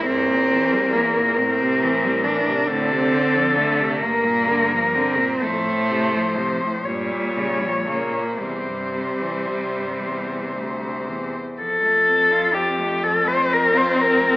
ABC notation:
X:1
M:6/8
L:1/16
Q:3/8=42
K:F
V:1 name="Cello"
B12 | A6 B6 | c6 _d6 | c12 |
A4 G2 A c B c B2 |]
V:2 name="Cello"
C4 B,2 C4 D2 | C4 A,2 B,4 C2 | A,4 F,2 G,4 B,2 | G,8- G,2 z2 |
F, A, C F C A, F, A, C F C A, |]
V:3 name="Cello" clef=bass
G,, B,, E, G, E, B,, A,, C, E, G, E, C, | A,, C, D, F, D, C, G,, B,, D, F, D, B,, | F,, A,, C, F, C, A,, G,, B,, _D, F, D, B,, | E,, G,, C, E, C, G,, E,,2 D,,2 E,,2 |
z6 C6 |]
V:4 name="Cello" clef=bass
E,,6 A,,6 | D,6 G,,6 | A,,6 B,,6 | C,12 |
F,,12 |]